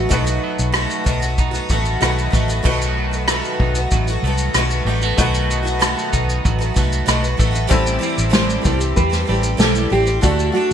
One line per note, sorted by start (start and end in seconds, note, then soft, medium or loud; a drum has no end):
0.00 0.11 F#3 medium
0.00 0.75 A3 medium
0.00 1.38 D#4 medium
0.00 0.13 F#4 medium
0.09 0.37 B1 medium
0.09 0.26 B2 medium
0.09 0.26 D#3 medium
0.09 0.43 F#3 medium
0.09 1.96 A3 medium
0.09 0.25 A3 medium
0.09 0.23 B3 medium
0.09 1.97 D#4 soft
0.09 0.23 F#4 medium
0.09 1.98 F#4 medium
0.09 kick loud
0.09 shaker medium
0.13 1.99 D#4 medium
0.13 1.99 B4 medium
0.24 0.72 A3 soft
0.24 0.73 B3 medium
0.24 0.73 F#4 medium
0.24 shaker medium
0.44 1.07 F#3 medium
0.59 0.85 B1 medium
0.59 shaker medium
0.72 1.05 B2 medium
0.72 1.03 D#3 medium
0.72 1.04 A3 medium
0.72 1.71 A3 medium
0.72 1.05 B3 medium
0.72 1.05 F#4 medium
0.72 cross-stick loud
0.72 shaker medium
0.91 shaker soft
1.04 1.58 B1 medium
1.04 1.21 D#3 medium
1.04 2.02 F#3 medium
1.04 1.21 A3 medium
1.04 1.21 B3 medium
1.04 1.18 F#4 medium
1.04 kick medium
1.04 shaker medium
1.20 1.53 A3 medium
1.20 1.52 B3 medium
1.20 1.50 F#4 medium
1.20 shaker medium
1.38 3.33 D#4 medium
1.38 kick medium
1.38 shaker medium
1.51 1.68 A3 soft
1.51 1.70 B3 medium
1.51 1.69 F#4 medium
1.51 cross-stick soft
1.51 shaker soft
1.69 1.96 A1 medium
1.69 2.00 D#3 medium
1.69 2.00 A3 medium
1.69 2.34 A3 medium
1.69 2.00 B3 medium
1.69 2.01 F#4 medium
1.69 kick medium
1.69 shaker soft
1.85 shaker soft
2.01 2.28 B1 medium
2.01 2.33 B2 medium
2.01 2.29 D#3 medium
2.01 2.66 F#3 medium
2.01 2.62 A3 medium
2.01 2.31 A3 medium
2.01 2.31 B3 medium
2.01 2.64 D#4 medium
2.01 2.65 F#4 medium
2.01 2.32 F#4 medium
2.01 2.65 B4 medium
2.01 cross-stick loud
2.01 shaker medium
2.18 shaker soft
2.30 2.59 A1 medium
2.30 2.48 D#3 medium
2.30 2.48 A3 medium
2.30 3.30 A3 medium
2.30 2.48 B3 medium
2.30 2.47 F#4 medium
2.30 kick medium
2.30 shaker medium
2.48 2.62 A3 soft
2.48 2.63 B3 medium
2.48 2.64 F#4 medium
2.48 shaker soft
2.63 3.40 B1 loud
2.63 3.11 B2 medium
2.63 3.12 D#3 medium
2.63 2.97 F#3 medium
2.63 3.12 A3 medium
2.63 5.14 A3 medium
2.63 3.12 B3 medium
2.63 5.14 D#4 medium
2.63 3.10 F#4 loud
2.63 5.15 F#4 medium
2.63 kick medium
2.63 crash medium
2.68 5.16 B4 medium
2.82 shaker medium
2.98 3.91 F#3 medium
3.11 3.28 A3 soft
3.11 3.28 B3 soft
3.11 3.28 F#4 soft
3.11 shaker soft
3.28 3.76 B2 medium
3.28 3.76 D#3 medium
3.28 3.76 A3 medium
3.28 4.23 A3 medium
3.28 3.75 B3 medium
3.28 3.74 F#4 medium
3.28 cross-stick loud
3.28 shaker medium
3.45 shaker soft
3.59 3.86 B1 loud
3.59 6.12 D#4 medium
3.59 kick medium
3.75 4.09 A3 soft
3.75 4.08 B3 soft
3.75 4.06 F#4 soft
3.75 shaker medium
3.91 4.18 A1 medium
3.91 4.54 F#3 medium
3.91 kick medium
3.91 shaker medium
4.07 4.24 A3 soft
4.07 4.24 B3 medium
4.07 4.23 F#4 medium
4.07 shaker soft
4.23 4.49 C2 medium
4.23 4.55 D#3 medium
4.23 4.86 A3 medium
4.23 4.55 A3 medium
4.23 4.55 B3 medium
4.27 4.56 F#4 medium
4.38 shaker medium
4.54 4.81 B1 medium
4.54 4.87 B2 medium
4.54 4.85 D#3 medium
4.54 5.17 F#3 medium
4.54 4.86 A3 medium
4.54 4.87 B3 medium
4.54 4.88 F#4 medium
4.54 cross-stick loud
4.54 shaker medium
4.71 shaker medium
4.85 5.12 A1 medium
4.85 5.02 D#3 medium
4.85 5.03 G3 medium
4.85 5.03 A3 medium
4.85 5.02 B3 medium
4.85 5.00 F#4 medium
5.02 5.80 A3 medium
5.02 5.17 A3 soft
5.02 5.18 B3 medium
5.02 5.18 F#4 medium
5.02 shaker soft
5.17 5.93 B1 loud
5.17 5.65 B2 medium
5.17 5.65 D#3 medium
5.17 5.49 F#3 medium
5.17 7.66 A3 medium
5.17 5.65 A3 medium
5.17 5.64 B3 medium
5.17 7.67 D#4 medium
5.17 7.68 F#4 medium
5.17 5.62 F#4 medium
5.17 7.68 B4 medium
5.17 kick loud
5.17 shaker medium
5.34 shaker medium
5.50 6.44 F#3 medium
5.50 shaker soft
5.63 5.79 A3 soft
5.63 5.80 B3 soft
5.63 5.80 F#4 medium
5.67 shaker medium
5.79 6.59 B2 medium
5.79 6.60 D#3 medium
5.79 6.61 A3 medium
5.79 6.77 A3 medium
5.79 6.59 B3 loud
5.79 6.57 F#4 medium
5.79 cross-stick loud
5.79 shaker medium
5.98 shaker soft
6.13 6.39 B1 medium
6.13 7.77 D#4 medium
6.13 kick medium
6.13 shaker medium
6.30 shaker medium
6.45 6.71 A1 medium
6.45 7.07 F#3 medium
6.45 kick medium
6.45 shaker medium
6.59 6.75 A3 soft
6.59 6.75 B3 medium
6.59 6.75 F#4 medium
6.59 cross-stick soft
6.59 shaker soft
6.74 7.02 C2 medium
6.74 7.05 D#3 medium
6.74 7.05 A3 medium
6.74 7.39 A3 medium
6.74 7.05 B3 medium
6.74 7.06 F#4 medium
6.74 kick medium
6.74 shaker medium
6.92 shaker medium
7.06 7.34 B1 medium
7.06 7.23 B2 medium
7.06 7.23 D#3 medium
7.06 7.71 F#3 medium
7.06 7.23 A3 medium
7.06 7.22 B3 medium
7.06 7.21 F#4 medium
7.06 cross-stick medium
7.06 shaker medium
7.22 7.36 A3 soft
7.22 7.37 B3 soft
7.22 7.38 F#4 soft
7.22 shaker medium
7.37 7.66 A1 medium
7.37 7.54 D#3 medium
7.37 7.53 A3 medium
7.37 8.38 A3 medium
7.37 7.51 B3 medium
7.37 7.50 F#4 medium
7.37 kick medium
7.37 shaker soft
7.51 7.68 A3 soft
7.51 7.68 B3 medium
7.51 7.68 F#4 medium
7.55 shaker soft
7.67 7.97 A1 loud
7.67 8.01 A2 medium
7.67 7.97 E3 medium
7.67 10.24 E3 medium
7.67 7.98 G3 medium
7.67 10.19 G3 medium
7.67 10.20 A3 medium
7.67 7.99 C4 loud
7.67 10.20 C4 medium
7.67 8.00 G4 loud
7.67 kick loud
7.67 shaker medium
7.73 10.21 E4 medium
7.73 10.21 A4 medium
7.87 shaker medium
7.99 8.29 E3 medium
7.99 8.30 G3 medium
7.99 8.30 C4 medium
7.99 8.30 G4 medium
7.99 shaker medium
8.03 8.96 C4 medium
8.18 8.57 A1 medium
8.18 shaker medium
8.30 8.64 A2 medium
8.30 8.60 E3 medium
8.30 8.62 G3 medium
8.30 8.62 C4 medium
8.30 8.63 G4 medium
8.30 snare loud
8.34 9.59 G4 medium
8.34 8.65 C5 loud
8.34 shaker medium
8.50 shaker medium
8.62 8.91 C2 medium
8.62 8.80 E3 medium
8.62 8.80 G3 medium
8.62 8.79 C4 medium
8.62 8.77 G4 medium
8.62 kick loud
8.62 shaker medium
8.66 9.28 A3 medium
8.66 8.96 C5 loud
8.79 9.11 G3 soft
8.79 9.10 C4 soft
8.79 9.08 G4 soft
8.79 shaker medium
8.96 9.23 E2 medium
8.96 9.91 C4 medium
8.96 9.59 B4 loud
8.96 kick medium
8.96 shaker medium
9.10 9.25 G3 soft
9.10 9.26 C4 medium
9.10 9.27 G4 medium
9.10 snare soft
9.10 shaker soft
9.26 9.55 A1 medium
9.26 9.43 E3 medium
9.26 9.43 G3 medium
9.26 10.24 A3 medium
9.26 9.42 C4 medium
9.26 9.40 G4 medium
9.42 9.57 G3 soft
9.42 9.57 C4 soft
9.42 9.59 G4 soft
9.42 shaker medium
9.57 9.86 B1 medium
9.57 9.91 A2 medium
9.57 9.89 E3 medium
9.57 9.90 G3 medium
9.57 9.91 C4 medium
9.57 9.92 G4 medium
9.57 10.30 G4 medium
9.57 9.93 A4 loud
9.57 snare loud
9.57 shaker medium
9.75 shaker medium
9.90 10.18 A1 medium
9.90 10.07 E3 medium
9.90 10.07 G3 medium
9.90 10.06 C4 medium
9.90 10.30 C4 medium
9.90 10.22 G4 loud
9.90 10.04 G4 medium
10.05 10.21 G3 soft
10.05 10.23 C4 medium
10.05 10.23 G4 medium
10.05 shaker soft
10.21 10.49 D2 loud
10.21 10.51 D3 medium
10.21 10.52 A3 medium
10.21 10.73 A3 medium
10.21 10.73 D4 medium
10.21 10.54 D4 medium
10.21 10.52 F#4 medium
10.21 10.54 F#4 medium
10.21 10.73 F#4 medium
10.21 kick loud
10.21 shaker medium
10.26 10.73 A4 medium
10.39 shaker medium
10.52 10.73 D3 medium
10.52 10.73 A3 medium
10.52 10.73 D4 medium
10.52 10.73 F#4 medium
10.56 10.73 D4 medium